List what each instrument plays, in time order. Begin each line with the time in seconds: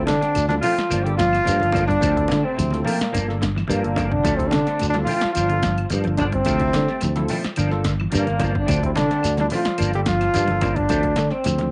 Already playing: tine electric piano C4 E4 F4 A4
0.06 clean electric guitar C3, trombone section D3, fingered electric bass D3, alto saxophone D4, trombone D4, muted clean electric guitar stroke, snare, closed hi-hat, high conga, low conga, shekere
0.20 clean electric guitar D3 C4, snare, closed hi-hat
0.35 fingered electric bass D2, muted clean electric guitar stroke, snare, closed hi-hat, high conga, claves, shekere
0.47 trombone section D3, clean electric guitar G3, tine electric piano C4 E4 F4 A4, alto saxophone D4, trombone D4, snare, closed hi-hat, high conga
0.61 trombone section F3, clean electric guitar F3 A3 C4, alto saxophone F4, trombone F4, open hi-hat, low conga, shekere
0.76 muted clean electric guitar stroke, muted fingered electric bass stroke, snare, closed hi-hat
0.89 fingered electric bass G1, clean electric guitar F3 A#3 D4, closed hi-hat, high conga, claves, shekere
1.03 clean electric guitar D3, trombone section G3, tine electric piano A#3 D4 F4 A4, alto saxophone G4, trombone G4, muted clean electric guitar stroke, closed hi-hat
1.16 trombone section F3, clean electric guitar F3, alto saxophone F4, trombone F4, muted clean electric guitar stroke, kick, snare, closed hi-hat
1.21 shekere
1.33 snare, closed hi-hat, claves
1.44 clean electric guitar F3 G3 A#3 D4, closed hi-hat, high conga, shekere
1.48 fingered electric bass G2
1.58 clean electric guitar F3, tine electric piano A#3 D4 F4 A4, muted clean electric guitar stroke, high conga
1.63 fingered electric bass G1, closed hi-hat
1.71 clean electric guitar F3 A#3 D4, kick, high conga, low conga, claves
1.76 closed hi-hat, shekere
1.86 trombone section D3, clean electric guitar G3, alto saxophone D4, trombone D4, muted clean electric guitar stroke, kick
1.91 closed hi-hat
2.00 fingered electric bass D2, clean electric guitar F3 A3 C4, kick, snare, closed hi-hat, high conga, low conga, claves, shekere
2.15 tine electric piano C4 E4 F4 A4, muted clean electric guitar stroke, kick, closed hi-hat
2.28 fingered electric bass D3, clean electric guitar A3, muted clean electric guitar stroke, snare, closed hi-hat, high conga, low conga
2.32 shekere
2.42 trombone section C3, clean electric guitar A3 C4, alto saxophone C4, trombone C4
2.56 fingered electric bass D2, clean electric guitar F3, muted clean electric guitar stroke, closed hi-hat, high conga, claves, shekere
2.70 tine electric piano C4 E4 F4 A4, muted clean electric guitar stroke, snare, closed hi-hat, high conga
2.84 trombone section A#2, clean electric guitar F3 A3 C4, alto saxophone A#3, trombone A#3, open hi-hat, low conga
2.88 shekere
2.99 muted clean electric guitar stroke, muted fingered electric bass stroke, snare, closed hi-hat
3.12 fingered electric bass G1, clean electric guitar D3 F3 A#3 D4, closed hi-hat, high conga, claves
3.16 shekere
3.27 tine electric piano A#3 D4 F4 A4, muted clean electric guitar stroke, snare
3.41 clean electric guitar D3, muted clean electric guitar stroke, kick, snare, closed hi-hat, shekere
3.56 clean electric guitar E3, snare, claves
3.68 fingered electric bass G2, trombone section A#2, clean electric guitar F3 A#3 D4, alto saxophone A#3, trombone A#3, muted clean electric guitar stroke, snare, closed hi-hat, high conga, shekere
3.83 fingered electric bass G1, tine electric piano A#3 D4 F4 A4, muted clean electric guitar stroke, closed hi-hat
3.96 clean electric guitar D3 F3 A#3 D4, kick, snare, closed hi-hat, high conga, low conga, claves, shekere
4.10 clean electric guitar C3, trombone section D3, trombone D4, alto saxophone D4, muted clean electric guitar stroke, kick
4.23 fingered electric bass D2, clean electric guitar D3 F3 A3, muted clean electric guitar stroke, kick, snare, closed hi-hat, high conga, low conga, claves, shekere
4.37 trombone section C3, trombone C4, tine electric piano C4 E4 F4 A4, alto saxophone C4, muted clean electric guitar stroke, kick, closed hi-hat
4.48 trombone section D3, trombone D4, high conga, low conga
4.52 clean electric guitar C3, fingered electric bass D3, alto saxophone D4, muted clean electric guitar stroke, snare, closed hi-hat, shekere
4.66 clean electric guitar D3 A3 C4, snare, closed hi-hat
4.79 fingered electric bass D2, muted clean electric guitar stroke, snare, closed hi-hat, high conga, claves, shekere
4.90 trombone section D3, trombone D4
4.94 clean electric guitar G3, tine electric piano C4 E4 F4 A4, alto saxophone D4, snare, closed hi-hat, high conga
5.05 trombone section F3, clean electric guitar F3 A3 C4, trombone F4, alto saxophone F4, open hi-hat, high conga, low conga
5.11 shekere
5.21 muted clean electric guitar stroke, muted fingered electric bass stroke, snare, closed hi-hat
5.33 trombone section F3, clean electric guitar F3 D4, trombone F4, alto saxophone F4, muted clean electric guitar stroke, closed hi-hat, high conga, claves, shekere
5.38 fingered electric bass G1
5.49 clean electric guitar D3, tine electric piano A#3 D4 F4 A4, muted clean electric guitar stroke, closed hi-hat
5.63 clean electric guitar F3, muted clean electric guitar stroke, kick, snare, closed hi-hat, shekere
5.78 closed hi-hat, claves
5.90 fingered electric bass G2, clean electric guitar F3 A#3 D4, muted clean electric guitar stroke, closed hi-hat, high conga, shekere
6.04 fingered electric bass G1, clean electric guitar F3, tine electric piano A#3 D4 F4 A4, muted clean electric guitar stroke, closed hi-hat
6.17 trombone section D3, clean electric guitar F3 D4, trombone D4, alto saxophone D4, kick, closed hi-hat, high conga, low conga, claves, shekere
6.32 trombone section C3, clean electric guitar G3, alto saxophone C4, trombone C4, muted clean electric guitar stroke, kick, closed hi-hat
6.45 fingered electric bass D2, clean electric guitar F3 A3 C4, kick, closed hi-hat, high conga, low conga, claves, shekere
6.60 tine electric piano C4 E4 F4 A4, muted clean electric guitar stroke, kick, closed hi-hat
6.73 fingered electric bass D3, clean electric guitar A3, muted clean electric guitar stroke, snare, closed hi-hat, high conga, shekere
6.87 clean electric guitar A3 C4, snare
7.01 fingered electric bass D2, clean electric guitar F3, muted clean electric guitar stroke, snare, closed hi-hat, high conga, claves, shekere
7.16 clean electric guitar F3, tine electric piano C4 E4 F4 A4, snare, closed hi-hat, high conga
7.28 clean electric guitar F3 A3 C4, open hi-hat, high conga, low conga, shekere
7.43 muted clean electric guitar stroke, muted fingered electric bass stroke, snare, closed hi-hat
7.56 fingered electric bass G1, clean electric guitar D3 F3 A#3 D4, closed hi-hat, high conga, claves, shekere
7.71 tine electric piano A#3 D4 F4 A4, muted clean electric guitar stroke, snare
7.84 clean electric guitar D3, muted clean electric guitar stroke, kick, snare, closed hi-hat, shekere
8.00 clean electric guitar E3, claves
8.10 trombone section A#2, clean electric guitar D3 F3 A#3 D4, snare, closed hi-hat, high conga
8.14 fingered electric bass G2, trombone A#3, alto saxophone A#3, shekere
8.27 fingered electric bass G1, tine electric piano A#3 D4 F4 A#4, muted clean electric guitar stroke, closed hi-hat, high conga
8.39 clean electric guitar D3 F3 A#3 D4, kick, snare, closed hi-hat, high conga, low conga, claves
8.44 shekere
8.52 muted clean electric guitar stroke, kick
8.57 trombone section D3, alto saxophone D4, trombone D4
8.66 fingered electric bass D2, clean electric guitar D3 F3 A3 C4, kick, snare, closed hi-hat, claves
8.71 shekere
8.80 tine electric piano C4 E4 F4 A4, muted clean electric guitar stroke, kick, closed hi-hat
8.84 trombone section C3, trombone C4
8.94 clean electric guitar C3, fingered electric bass D3, trombone section D3, trombone D4, muted clean electric guitar stroke, snare, closed hi-hat, high conga
8.98 shekere
9.09 clean electric guitar D3 A3 C4, snare, closed hi-hat
9.21 fingered electric bass D2, muted clean electric guitar stroke, snare, closed hi-hat, high conga, claves, shekere
9.37 trombone section D3, clean electric guitar G3, tine electric piano C4 E4 F4 A4, trombone D4, snare, closed hi-hat, high conga
9.50 trombone section F3, clean electric guitar F3 A3 C4, open hi-hat, high conga, low conga, shekere
9.55 trombone F4
9.64 muted clean electric guitar stroke, muted fingered electric bass stroke, snare, closed hi-hat
9.78 fingered electric bass G1, clean electric guitar F3 A#3 D4, closed hi-hat, high conga, claves, shekere
9.92 clean electric guitar D3, trombone section G3, tine electric piano A#3 D4 F4 A4, trombone G4, muted clean electric guitar stroke, closed hi-hat
10.06 trombone section F3, clean electric guitar F3, trombone F4, muted clean electric guitar stroke, kick, snare, closed hi-hat, shekere
10.21 snare, closed hi-hat, claves
10.34 fingered electric bass G2, clean electric guitar F3 G3 A#3 D4, snare, closed hi-hat, high conga, shekere
10.48 fingered electric bass G1, clean electric guitar F3, tine electric piano A#3 D4 F4 A4, muted clean electric guitar stroke, closed hi-hat, high conga
10.61 clean electric guitar F3 A#3 D4, kick, closed hi-hat, high conga, low conga, claves, shekere
10.75 trombone section D3, clean electric guitar G3, trombone D4, muted clean electric guitar stroke, kick, closed hi-hat
10.89 fingered electric bass D2, clean electric guitar F3 A3 C4, kick, closed hi-hat, claves, shekere
11.03 muted clean electric guitar stroke, kick, closed hi-hat
11.16 fingered electric bass D3, clean electric guitar A3, muted clean electric guitar stroke, snare, closed hi-hat, high conga, shekere
11.31 clean electric guitar C4, trombone C4, snare
11.44 fingered electric bass D2, clean electric guitar F3, muted clean electric guitar stroke, snare, closed hi-hat, high conga, claves, shekere
11.58 clean electric guitar F3, snare, closed hi-hat, high conga